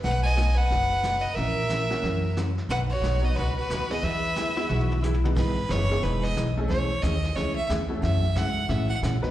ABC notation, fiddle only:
X:1
M:4/4
L:1/8
Q:"Swing" 1/4=180
K:E
V:1 name="Fiddle"
B d2 B4 B | ^A6 z2 | B F2 B F F2 B | B6 z2 |
B2 c2 B d z2 | c2 d2 c e z2 | e2 f2 e f z2 |]